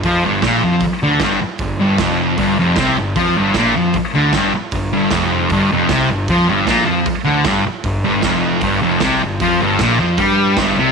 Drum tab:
HH |o-o-o-o-|o-o-o-o-|o-o-o-o-|o-o-o-o-|
SD |--o---o-|--o---o-|--o---o-|--o---o-|
BD |o-o-o-o-|o-o-o-o-|o-o-o-o-|o-o-o-o-|

HH |o-o-o-o-|o-o-o-o-|o-o-o-o-|
SD |--o---o-|--o---o-|--o---o-|
BD |o-o-o-o-|o-o-o-o-|o-o-o-o-|